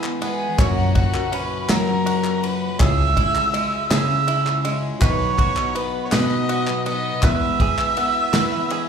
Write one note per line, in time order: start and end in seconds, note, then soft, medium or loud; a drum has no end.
0.00 0.55 E2 medium
0.00 0.47 E3 loud
0.00 0.55 E3 medium
0.00 0.54 G#3 medium
0.00 0.21 B3 medium
0.00 0.55 B3 medium
0.00 0.55 E4 medium
0.00 0.22 E4 medium
0.00 0.59 G#4 medium
0.00 0.55 B4 medium
0.00 0.58 B4 loud
0.00 0.22 B4 medium
0.00 0.56 E5 medium
0.00 clap medium
0.05 0.21 B3 soft
0.21 0.58 G#3 medium
0.21 0.59 B3 medium
0.21 0.58 B3 medium
0.21 0.59 E4 medium
0.21 0.61 G#4 medium
0.21 0.60 B4 medium
0.21 0.61 G#5 loud
0.21 ride medium
0.58 2.76 F#1 medium
0.58 0.92 F#2 loud
0.58 2.76 F#2 medium
0.58 2.76 A#2 medium
0.58 2.76 F#3 medium
0.58 0.77 F#3 medium
0.58 0.77 C#4 medium
0.58 2.76 C#4 medium
0.58 2.76 F#4 medium
0.58 0.77 F#4 medium
0.58 0.96 F#4 loud
0.58 0.76 A#4 loud
0.58 2.06 C#5 loud
0.58 2.77 C#5 medium
0.58 0.96 F#5 loud
0.58 kick loud
0.58 clap loud
0.58 ride medium
0.77 1.15 C#4 soft
0.77 1.15 F#4 medium
0.77 1.13 A#4 medium
0.95 2.05 F#4 medium
0.95 1.35 F#4 medium
0.95 1.35 F#5 loud
0.95 kick medium
0.95 clap soft
0.95 ride medium
1.14 1.32 C#4 soft
1.14 1.33 F#4 medium
1.14 1.33 A#4 medium
1.14 clap medium
1.32 1.68 F#3 medium
1.32 2.80 C#4 medium
1.32 1.69 C#4 medium
1.32 1.69 F#4 medium
1.32 1.72 B4 medium
1.32 1.72 B5 loud
1.32 ride medium
1.69 1.88 F#3 medium
1.69 2.68 F#3 loud
1.69 1.88 C#4 medium
1.69 1.88 F#4 medium
1.69 2.46 A#4 medium
1.69 1.87 A#4 medium
1.69 2.45 A#5 loud
1.69 snare loud
1.69 clap medium
1.69 ride medium
1.88 2.26 C#4 medium
1.88 2.25 F#4 medium
1.88 2.23 A#4 medium
1.88 clap soft
2.06 2.80 F#4 medium
2.06 ride medium
2.24 2.42 C#4 soft
2.24 2.43 F#4 medium
2.24 2.43 A#4 medium
2.24 clap medium
2.43 2.80 F#3 medium
2.43 2.80 C#4 medium
2.43 2.81 F#4 medium
2.43 2.80 B4 medium
2.43 2.79 B5 loud
2.43 ride medium
2.79 4.97 C#2 medium
2.79 3.13 C#2 loud
2.79 2.98 C#3 medium
2.79 4.97 C#3 medium
2.79 4.97 G#3 medium
2.79 2.99 G#3 medium
2.79 4.97 C#4 medium
2.79 2.99 C#4 loud
2.79 4.97 E4 medium
2.79 2.98 E4 loud
2.79 3.89 G#4 medium
2.79 2.96 G#4 loud
2.79 4.98 C#5 medium
2.79 3.87 E5 loud
2.79 4.98 E5 medium
2.79 3.87 E6 loud
2.79 kick loud
2.79 clap loud
2.79 ride medium
2.97 3.36 C#4 soft
2.97 3.35 E4 medium
2.97 3.34 G#4 medium
3.17 4.26 E4 medium
3.17 kick medium
3.17 ride medium
3.35 3.53 C#4 soft
3.35 3.53 E4 medium
3.35 3.54 G#4 medium
3.35 clap medium
3.53 3.89 G#3 medium
3.53 4.63 G#3 medium
3.53 3.90 C#4 medium
3.53 3.90 E4 medium
3.53 3.91 G#4 medium
3.53 clap soft
3.53 ride medium
3.73 clap soft
3.90 4.09 C#3 medium
3.90 4.89 C#3 medium
3.90 4.09 G#3 medium
3.90 4.09 C#4 loud
3.90 4.09 E4 medium
3.90 5.01 G#4 medium
3.90 4.08 G#4 medium
3.90 4.71 E5 medium
3.90 4.70 E6 loud
3.90 snare loud
3.90 clap loud
3.90 ride medium
4.09 4.48 C#4 soft
4.09 4.46 E4 medium
4.09 4.45 G#4 medium
4.28 5.01 E4 medium
4.28 ride medium
4.46 4.63 C#4 soft
4.46 4.64 E4 medium
4.46 4.64 G#4 medium
4.46 clap medium
4.64 5.01 G#3 medium
4.64 5.01 C#4 medium
4.64 5.02 E4 medium
4.64 5.02 G#4 medium
4.64 ride medium
5.00 7.18 B1 medium
5.00 5.34 B1 loud
5.00 5.19 B2 medium
5.00 7.18 B2 medium
5.00 5.20 D#3 medium
5.00 7.18 F#3 medium
5.00 5.20 F#3 medium
5.00 7.18 B3 medium
5.00 5.19 B3 medium
5.00 7.18 D#4 medium
5.00 5.18 D#4 loud
5.00 7.19 B4 medium
5.00 6.11 B4 loud
5.00 5.17 B4 medium
5.00 5.78 C#5 medium
5.00 7.19 D#5 medium
5.00 5.77 C#6 loud
5.00 kick loud
5.00 clap medium
5.00 ride medium
5.18 5.57 F#3 soft
5.18 5.56 B3 soft
5.18 5.55 D#4 soft
5.18 5.54 B4 medium
5.38 6.48 F#4 medium
5.38 kick medium
5.38 clap soft
5.38 ride medium
5.55 5.73 F#3 soft
5.55 5.74 B3 soft
5.55 5.75 D#4 medium
5.55 5.74 B4 medium
5.55 clap medium
5.74 6.11 F#3 medium
5.74 6.85 B3 medium
5.74 6.11 B3 medium
5.74 6.11 D#4 medium
5.74 6.07 B4 medium
5.74 6.12 B4 medium
5.74 6.06 B5 medium
5.74 ride medium
6.05 6.14 C#5 medium
6.05 6.13 C#6 medium
6.11 6.30 B2 medium
6.11 7.11 B2 loud
6.11 6.30 D#3 medium
6.11 6.31 F#3 medium
6.11 6.30 B3 medium
6.11 6.30 D#4 medium
6.11 7.23 B4 loud
6.11 6.28 B4 medium
6.11 6.86 D#5 medium
6.11 6.85 D#6 loud
6.11 snare loud
6.11 clap medium
6.11 ride medium
6.29 6.68 F#3 soft
6.29 6.68 B3 soft
6.29 6.67 D#4 soft
6.29 6.66 B4 medium
6.29 clap soft
6.49 7.23 F#4 medium
6.49 ride medium
6.67 6.84 F#3 soft
6.67 6.85 B3 medium
6.67 6.86 D#4 medium
6.67 6.86 B4 medium
6.67 clap medium
6.85 7.22 F#3 medium
6.85 7.23 B3 medium
6.85 7.22 B3 medium
6.85 7.23 D#4 medium
6.85 7.23 B4 medium
6.85 7.26 D#5 medium
6.85 7.25 D#6 loud
6.85 ride medium
7.22 7.56 E2 loud
7.22 8.89 E2 medium
7.22 7.41 E3 medium
7.22 8.89 E3 medium
7.22 8.89 G#3 medium
7.22 7.41 G#3 medium
7.22 8.89 B3 medium
7.22 7.41 B3 medium
7.22 8.89 E4 medium
7.22 7.41 E4 medium
7.22 8.34 B4 medium
7.22 8.89 B4 medium
7.22 7.40 B4 loud
7.22 8.89 E5 loud
7.22 8.89 E5 medium
7.22 8.89 E6 loud
7.22 kick loud
7.22 clap medium
7.22 ride medium
7.41 7.79 B3 medium
7.41 7.79 E4 medium
7.41 7.77 B4 medium
7.60 8.70 G#4 medium
7.60 kick medium
7.60 ride medium
7.78 7.97 B3 soft
7.78 7.97 E4 medium
7.78 7.96 B4 medium
7.78 clap medium
7.97 8.33 G#3 medium
7.97 8.89 B3 medium
7.97 8.33 B3 medium
7.97 8.34 E4 medium
7.97 8.35 B4 medium
7.97 ride medium
8.33 8.89 E3 loud
8.33 8.52 E3 loud
8.33 8.52 G#3 medium
8.33 8.52 B3 loud
8.33 8.52 E4 loud
8.33 8.89 B4 medium
8.33 8.50 B4 loud
8.33 snare loud
8.33 clap medium
8.33 ride medium
8.52 8.89 B3 medium
8.52 8.89 E4 medium
8.52 8.87 B4 medium
8.52 clap soft
8.70 8.89 G#4 medium
8.70 ride medium